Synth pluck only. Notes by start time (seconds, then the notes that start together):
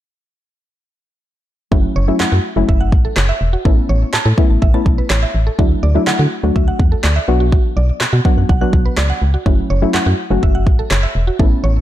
1.71 F#3 A3 C#4 E4
2.08 F#3 A3 C#4 E4
2.56 F#3 A3 C#4 E4
3.65 A3 B3 C#4 E4
4.38 A3 B3 C#4 E4
4.74 A3 B3 C#4 E4
5.58 F#3 A3 D4 E4
5.95 F#3 A3 D4 E4
6.43 F#3 A3 D4 F#4
7.28 F#3 B3 D4 F#4
8.25 F#3 B3 D4 F#4
8.61 F#3 B3 D4 F#4
9.46 F#3 A3 C#4 E4
9.82 F#3 A3 C#4 E4
10.30 F#3 A3 C#4 F#4
11.39 A3 B3 C#4 E4